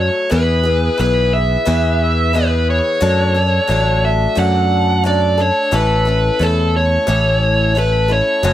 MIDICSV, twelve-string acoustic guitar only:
0, 0, Header, 1, 2, 480
1, 0, Start_track
1, 0, Key_signature, 3, "major"
1, 0, Tempo, 676437
1, 226, Time_signature, 4, 2, 24, 8
1, 6055, End_track
2, 0, Start_track
2, 0, Title_t, "Twelve-string acoustic guitar"
2, 0, Program_c, 0, 25
2, 0, Note_on_c, 0, 54, 62
2, 0, Note_on_c, 0, 57, 60
2, 0, Note_on_c, 0, 69, 61
2, 207, Note_off_c, 0, 54, 0
2, 210, Note_on_c, 0, 52, 73
2, 216, Note_off_c, 0, 57, 0
2, 219, Note_on_c, 0, 59, 78
2, 223, Note_on_c, 0, 64, 80
2, 225, Note_off_c, 0, 69, 0
2, 227, Note_on_c, 0, 68, 94
2, 442, Note_off_c, 0, 68, 0
2, 450, Note_on_c, 0, 68, 57
2, 454, Note_off_c, 0, 64, 0
2, 458, Note_off_c, 0, 52, 0
2, 463, Note_off_c, 0, 59, 0
2, 463, Note_on_c, 0, 64, 52
2, 473, Note_on_c, 0, 59, 43
2, 692, Note_on_c, 0, 52, 61
2, 694, Note_off_c, 0, 59, 0
2, 698, Note_off_c, 0, 64, 0
2, 698, Note_off_c, 0, 68, 0
2, 702, Note_on_c, 0, 59, 65
2, 707, Note_on_c, 0, 64, 72
2, 713, Note_on_c, 0, 68, 78
2, 1165, Note_off_c, 0, 52, 0
2, 1171, Note_off_c, 0, 59, 0
2, 1174, Note_on_c, 0, 52, 74
2, 1176, Note_off_c, 0, 64, 0
2, 1179, Note_on_c, 0, 59, 81
2, 1181, Note_off_c, 0, 68, 0
2, 1184, Note_on_c, 0, 64, 91
2, 1190, Note_on_c, 0, 68, 85
2, 1646, Note_off_c, 0, 52, 0
2, 1655, Note_off_c, 0, 59, 0
2, 1655, Note_on_c, 0, 52, 63
2, 1662, Note_off_c, 0, 64, 0
2, 1664, Note_on_c, 0, 59, 71
2, 1668, Note_off_c, 0, 68, 0
2, 1671, Note_on_c, 0, 64, 69
2, 1676, Note_on_c, 0, 68, 74
2, 2130, Note_off_c, 0, 52, 0
2, 2132, Note_off_c, 0, 59, 0
2, 2133, Note_on_c, 0, 54, 82
2, 2135, Note_on_c, 0, 57, 86
2, 2139, Note_off_c, 0, 64, 0
2, 2140, Note_off_c, 0, 68, 0
2, 2142, Note_on_c, 0, 62, 95
2, 2143, Note_on_c, 0, 69, 89
2, 2366, Note_off_c, 0, 69, 0
2, 2374, Note_on_c, 0, 69, 57
2, 2376, Note_off_c, 0, 62, 0
2, 2379, Note_off_c, 0, 54, 0
2, 2380, Note_off_c, 0, 57, 0
2, 2384, Note_on_c, 0, 62, 49
2, 2398, Note_on_c, 0, 57, 42
2, 2607, Note_off_c, 0, 57, 0
2, 2608, Note_on_c, 0, 54, 71
2, 2616, Note_off_c, 0, 62, 0
2, 2616, Note_on_c, 0, 57, 80
2, 2620, Note_off_c, 0, 69, 0
2, 2624, Note_on_c, 0, 62, 77
2, 2634, Note_on_c, 0, 69, 83
2, 3081, Note_off_c, 0, 54, 0
2, 3089, Note_on_c, 0, 54, 80
2, 3094, Note_off_c, 0, 57, 0
2, 3094, Note_off_c, 0, 62, 0
2, 3097, Note_on_c, 0, 57, 80
2, 3102, Note_off_c, 0, 69, 0
2, 3102, Note_on_c, 0, 62, 88
2, 3105, Note_on_c, 0, 69, 79
2, 3565, Note_off_c, 0, 54, 0
2, 3573, Note_on_c, 0, 54, 69
2, 3580, Note_off_c, 0, 57, 0
2, 3582, Note_off_c, 0, 62, 0
2, 3583, Note_on_c, 0, 57, 65
2, 3590, Note_on_c, 0, 62, 78
2, 3592, Note_off_c, 0, 69, 0
2, 3595, Note_on_c, 0, 69, 67
2, 3807, Note_off_c, 0, 69, 0
2, 3815, Note_on_c, 0, 69, 55
2, 3818, Note_off_c, 0, 62, 0
2, 3820, Note_off_c, 0, 54, 0
2, 3824, Note_off_c, 0, 57, 0
2, 3826, Note_on_c, 0, 62, 50
2, 3837, Note_on_c, 0, 57, 40
2, 4054, Note_off_c, 0, 57, 0
2, 4054, Note_on_c, 0, 45, 75
2, 4057, Note_on_c, 0, 52, 88
2, 4061, Note_off_c, 0, 69, 0
2, 4062, Note_on_c, 0, 57, 88
2, 4064, Note_on_c, 0, 61, 85
2, 4065, Note_off_c, 0, 62, 0
2, 4068, Note_on_c, 0, 64, 83
2, 4071, Note_on_c, 0, 69, 92
2, 4286, Note_off_c, 0, 69, 0
2, 4294, Note_on_c, 0, 69, 55
2, 4299, Note_off_c, 0, 64, 0
2, 4300, Note_off_c, 0, 45, 0
2, 4302, Note_off_c, 0, 52, 0
2, 4303, Note_off_c, 0, 61, 0
2, 4304, Note_off_c, 0, 57, 0
2, 4307, Note_on_c, 0, 64, 46
2, 4312, Note_on_c, 0, 61, 45
2, 4318, Note_on_c, 0, 57, 43
2, 4527, Note_off_c, 0, 57, 0
2, 4536, Note_on_c, 0, 57, 68
2, 4537, Note_off_c, 0, 61, 0
2, 4540, Note_off_c, 0, 69, 0
2, 4545, Note_off_c, 0, 64, 0
2, 4546, Note_on_c, 0, 61, 72
2, 4553, Note_on_c, 0, 64, 67
2, 4560, Note_on_c, 0, 69, 75
2, 5015, Note_on_c, 0, 45, 74
2, 5015, Note_on_c, 0, 52, 84
2, 5018, Note_off_c, 0, 57, 0
2, 5018, Note_off_c, 0, 64, 0
2, 5020, Note_off_c, 0, 61, 0
2, 5021, Note_on_c, 0, 57, 75
2, 5023, Note_on_c, 0, 61, 87
2, 5026, Note_off_c, 0, 69, 0
2, 5027, Note_on_c, 0, 64, 83
2, 5029, Note_on_c, 0, 69, 90
2, 5491, Note_off_c, 0, 57, 0
2, 5498, Note_off_c, 0, 61, 0
2, 5499, Note_on_c, 0, 57, 59
2, 5501, Note_off_c, 0, 45, 0
2, 5501, Note_off_c, 0, 52, 0
2, 5506, Note_on_c, 0, 61, 57
2, 5507, Note_off_c, 0, 64, 0
2, 5508, Note_off_c, 0, 69, 0
2, 5515, Note_on_c, 0, 64, 65
2, 5523, Note_on_c, 0, 69, 74
2, 5727, Note_off_c, 0, 69, 0
2, 5736, Note_off_c, 0, 64, 0
2, 5736, Note_on_c, 0, 69, 54
2, 5743, Note_off_c, 0, 57, 0
2, 5744, Note_on_c, 0, 64, 47
2, 5745, Note_off_c, 0, 61, 0
2, 5753, Note_on_c, 0, 61, 44
2, 5759, Note_on_c, 0, 57, 43
2, 5981, Note_off_c, 0, 69, 0
2, 5981, Note_on_c, 0, 42, 82
2, 5982, Note_off_c, 0, 57, 0
2, 5983, Note_on_c, 0, 49, 88
2, 5984, Note_off_c, 0, 61, 0
2, 5986, Note_off_c, 0, 64, 0
2, 5989, Note_on_c, 0, 54, 87
2, 5990, Note_on_c, 0, 57, 89
2, 5993, Note_on_c, 0, 61, 91
2, 5996, Note_on_c, 0, 69, 83
2, 6055, Note_off_c, 0, 42, 0
2, 6055, Note_off_c, 0, 49, 0
2, 6055, Note_off_c, 0, 54, 0
2, 6055, Note_off_c, 0, 57, 0
2, 6055, Note_off_c, 0, 61, 0
2, 6055, Note_off_c, 0, 69, 0
2, 6055, End_track
0, 0, End_of_file